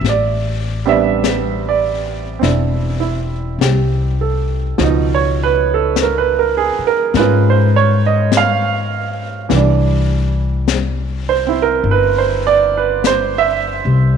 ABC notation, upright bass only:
X:1
M:4/4
L:1/8
Q:"Swing" 1/4=51
K:C
V:1 name="Upright bass" clef=bass
A,,,4 E,,,2 C,,2 | _D,,3 z _A,,4 | C,,4 G,,,3 C,, |]